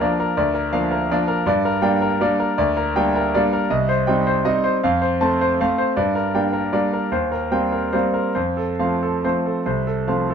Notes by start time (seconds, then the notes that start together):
Already playing: A#4
0.01 F3 A#3 D4 D5
0.20 A#4
0.37 D2 D5
0.54 A#4
0.72 F3 A#3 D4 F5
0.91 A#4
1.11 F3 A#3 D4 D5
1.28 A#4
1.46 G2 D5
1.65 A#4
1.82 G3 A#3 D4 G5
2.01 A#4
2.21 G3 A#3 D4 D5
2.40 A#4
2.58 D2 D5
2.77 A#4
2.96 G3 A#3 D4 G5
3.15 A#4
3.35 G3 A#3 D4 D5
3.53 A#4
3.70 C2 D#5
3.89 C5
4.07 G3 C4 D#4 G5
4.27 C5
4.45 G3 C4 D#4 D#5
4.64 C5
4.84 F2 F5
5.02 C5
5.21 A3 C4 A5
5.41 C5
5.61 A3 C4 F5
5.78 C5
5.97 G2 D5
6.15 A#4
6.34 G3 A#3 D4 G5
6.53 A#4
6.73 G3 A#3 D4 D5
6.93 A#4
7.12 D#2 C5
7.32 A#4
7.51 G3 A#3 C4 G5
7.72 A#4
7.93 G3 A#3 C4 C5
8.14 A#4
8.35 F2 C5
8.57 A4
8.79 F3 A3 C4 F5
9.03 A4
9.24 F3 A3 C4 C5
9.46 A4
9.66 C2 C5
9.87 A4
10.08 F3 A3 C4 F5
10.30 A4